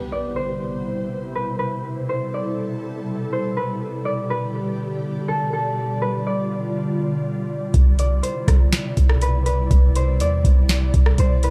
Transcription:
0.00 7.70 B2 medium
0.00 3.77 C3 medium
0.00 11.50 G3 medium
0.00 3.77 E4 medium
0.00 1.82 C5 loud
0.00 impact medium
0.12 1.97 D5 medium
0.36 1.41 C5 medium
1.35 1.58 B4 medium
1.59 2.15 B4 medium
1.84 3.79 A4 loud
2.09 3.32 C5 medium
2.34 4.05 D5 medium
3.33 3.63 C5 medium
3.57 4.30 B4 medium
3.81 7.70 D3 medium
3.81 5.75 G4 medium
3.81 11.50 D5 loud
4.05 5.90 D5 medium
4.30 6.01 B4 medium
5.28 5.53 A4 loud
5.53 7.73 A4 medium
5.77 7.72 F4 medium
6.02 8.07 B4 medium
6.27 7.99 D5 medium
7.74 8.21 C2 loud
7.74 11.50 B2 medium
7.74 11.50 C3 medium
7.74 11.50 E4 medium
7.74 kick loud
7.74 closed hi-hat medium
7.99 9.84 D5 medium
7.99 closed hi-hat medium
8.23 9.28 C5 medium
8.23 closed hi-hat medium
8.48 8.71 C2 loud
8.48 kick loud
8.48 cross-stick medium
8.48 closed hi-hat medium
8.73 snare loud
8.73 closed hi-hat medium
8.97 9.68 C2 loud
8.97 kick medium
8.97 closed hi-hat medium
9.09 cross-stick loud
9.21 9.45 B4 medium
9.21 closed hi-hat medium
9.46 10.02 B4 medium
9.46 closed hi-hat medium
9.71 10.21 C2 loud
9.71 kick loud
9.71 closed hi-hat medium
9.96 11.19 C5 medium
9.96 closed hi-hat medium
10.20 10.43 E2 loud
10.20 11.50 D5 medium
10.20 closed hi-hat medium
10.45 10.92 C2 loud
10.45 kick loud
10.45 closed hi-hat medium
10.69 snare loud
10.69 closed hi-hat medium
10.94 11.17 C2 loud
10.94 kick medium
10.94 closed hi-hat medium
11.06 cross-stick loud
11.18 11.50 C2 loud
11.18 11.50 C5 medium
11.18 closed hi-hat medium
11.43 11.50 B4 medium
11.43 closed hi-hat medium

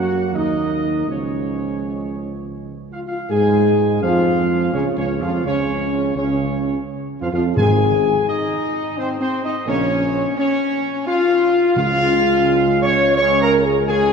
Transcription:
0.00 0.34 F#2 medium
0.00 1.02 F#3 medium
0.00 1.06 A#3 medium
0.00 0.31 F#4 medium
0.00 0.30 F#5 medium
0.32 1.06 D#2 medium
0.32 1.04 D#4 medium
0.32 1.07 D#5 medium
1.07 2.93 C#2 medium
1.07 2.93 F3 medium
1.07 2.93 G#3 medium
1.07 2.57 C#4 medium
1.07 2.52 C#5 medium
2.92 3.04 F4 medium
2.92 2.99 F5 medium
3.06 3.17 F4 medium
3.06 3.29 F5 medium
3.29 4.04 G#2 medium
3.29 3.98 G#3 medium
3.29 3.98 G#4 medium
3.29 3.98 G#5 medium
4.02 4.73 F2 medium
4.02 4.70 F3 medium
4.02 4.70 F4 medium
4.02 4.70 F5 medium
4.72 4.84 C#2 medium
4.72 4.96 C#3 medium
4.72 4.83 C#4 medium
4.72 4.84 C#5 medium
4.97 5.22 C#2 medium
4.97 5.08 C#3 medium
4.97 5.08 C#4 medium
4.97 5.19 C#5 medium
5.20 5.46 F2 medium
5.20 5.43 F3 medium
5.20 5.44 F4 medium
5.20 5.45 F5 medium
5.44 6.15 C#2 medium
5.44 6.11 C#3 medium
5.44 6.12 C#4 medium
5.44 6.12 C#5 medium
6.15 6.82 C#2 medium
6.15 6.82 C#3 medium
6.15 6.82 C#4 medium
6.15 6.82 C#5 medium
7.20 7.32 F2 medium
7.20 7.27 F3 medium
7.20 7.31 F4 medium
7.20 7.27 F5 medium
7.32 7.55 F2 medium
7.32 7.55 F3 medium
7.32 7.43 F4 medium
7.32 7.44 F5 medium
7.55 8.15 G#1 medium
7.55 8.58 G#2 medium
7.55 7.82 D#3 medium
7.55 7.82 C4 medium
7.55 8.22 G#4 loud
7.55 8.23 G#5 loud
8.27 8.97 D#4 loud
8.27 8.93 D#5 medium
8.96 9.19 C4 loud
8.96 9.08 C5 medium
9.20 9.42 C4 loud
9.20 9.42 C5 medium
9.44 9.55 D#4 loud
9.44 9.66 D#5 medium
9.66 10.25 A#1 medium
9.66 9.91 C#3 medium
9.66 9.91 A#3 medium
9.66 10.33 C#4 loud
9.66 10.33 C#5 medium
10.37 11.02 C#4 loud
10.37 11.03 C#5 medium
11.06 11.72 F4 loud
11.06 11.72 F5 medium
11.76 14.13 C#2 medium
11.76 12.77 C#3 medium
11.76 13.13 C#3 medium
11.76 13.13 G#3 medium
11.76 12.78 F4 loud
11.76 12.78 F5 loud
12.82 13.15 C#5 loud
12.82 13.15 C#6 medium
13.17 13.84 C#3 medium
13.17 13.84 G#3 medium
13.17 13.39 C#5 loud
13.17 13.39 C#6 loud
13.40 13.63 A#4 loud
13.40 13.51 A#5 loud
13.64 13.87 G#4 loud
13.64 13.75 G#5 medium
13.87 14.13 C#3 medium
13.87 14.13 G#3 medium
13.87 14.13 G#4 loud
13.87 14.13 G#5 loud

